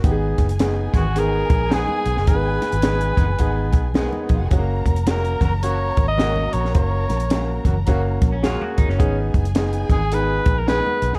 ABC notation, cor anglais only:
X:1
M:4/4
L:1/16
Q:"Swing" 1/4=107
K:G#dor
V:1 name="Cor anglais"
z6 F2 A4 G4 | B12 z4 | z4 A2 A2 c3 d3 c2 | c6 z8 z2 |
z6 G2 B3 A B3 G |]